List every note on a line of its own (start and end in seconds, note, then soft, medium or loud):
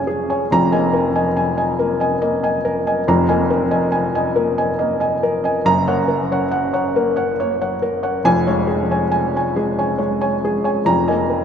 0.00 0.46 F1 medium
0.00 0.46 F2 medium
0.00 0.53 C#4 medium
0.00 0.07 G#4 medium
0.00 0.30 C#5 medium
0.00 0.30 G#5 medium
0.07 0.42 G#4 medium
0.30 0.49 C#5 medium
0.30 0.49 G#5 medium
0.51 3.04 F1 medium
0.51 3.05 F2 medium
0.51 0.86 A#5 loud
0.72 1.06 A#3 medium
0.72 0.91 D#5 medium
0.72 0.92 G#5 medium
0.93 1.28 A#4 medium
1.15 1.34 D#5 medium
1.15 1.35 G#5 medium
1.37 1.56 G#5 medium
1.57 1.77 D#5 medium
1.57 1.77 G#5 medium
1.79 2.14 A#3 medium
1.79 2.14 A#4 medium
2.00 2.20 D#5 medium
2.00 2.20 G#5 medium
2.21 2.56 A#3 medium
2.21 2.42 D#5 medium
2.43 2.63 D#5 medium
2.43 2.63 G#5 medium
2.65 2.99 A#4 medium
2.87 3.06 D#5 medium
2.87 3.06 G#5 medium
3.08 5.62 F1 medium
3.08 5.62 F2 medium
3.08 3.42 A#5 medium
3.29 3.63 A#3 medium
3.29 3.48 D#5 medium
3.29 3.48 G#5 medium
3.50 3.85 A#4 medium
3.71 3.91 D#5 medium
3.71 3.90 G#5 medium
3.92 4.14 G#5 medium
4.15 4.34 D#5 medium
4.15 4.34 G#5 medium
4.35 4.70 A#3 medium
4.35 4.71 A#4 medium
4.58 4.77 D#5 medium
4.58 4.77 G#5 medium
4.79 5.14 A#3 medium
4.79 4.99 D#5 medium
5.00 5.20 D#5 medium
5.00 5.21 G#5 medium
5.23 5.58 A#4 medium
5.44 5.64 D#5 medium
5.44 5.64 G#5 medium
5.65 8.21 F#1 medium
5.65 8.22 F#2 medium
5.65 6.00 A#5 loud
5.88 6.22 A#3 medium
5.88 6.07 C#5 medium
5.88 6.07 F#5 medium
6.08 6.43 A#4 medium
6.32 6.51 C#5 medium
6.32 6.50 F#5 medium
6.51 6.72 F#5 medium
6.73 6.93 C#5 medium
6.73 6.94 F#5 medium
6.96 7.31 A#3 medium
6.96 7.31 A#4 medium
7.16 7.36 C#5 medium
7.16 7.37 F#5 medium
7.40 7.75 A#3 medium
7.40 7.60 C#5 medium
7.62 7.81 C#5 medium
7.62 7.81 F#5 medium
7.82 8.17 A#4 medium
8.03 8.23 C#5 medium
8.03 8.23 F#5 medium
8.24 10.83 F1 medium
8.24 10.83 F2 medium
8.24 8.46 G#5 loud
8.47 8.82 G#3 medium
8.47 8.67 C#5 medium
8.47 8.67 G#5 medium
8.67 9.03 G#4 medium
8.91 9.11 C#5 medium
8.91 9.10 G#5 medium
9.12 9.35 G#5 medium
9.36 9.55 C#5 medium
9.36 9.55 G#5 medium
9.56 9.91 G#3 medium
9.56 9.91 G#4 medium
9.78 9.97 C#5 medium
9.78 9.98 G#5 medium
9.98 10.34 G#3 medium
9.98 10.20 C#5 medium
10.21 10.41 C#5 medium
10.21 10.41 G#5 medium
10.45 10.79 G#4 medium
10.64 10.85 C#5 medium
10.64 10.85 G#5 medium
10.85 11.45 F1 medium
10.85 11.45 F2 medium
10.85 11.22 A#5 loud
11.08 11.44 A#3 medium
11.08 11.28 D#5 medium
11.08 11.28 G#5 medium
11.30 11.45 A#4 medium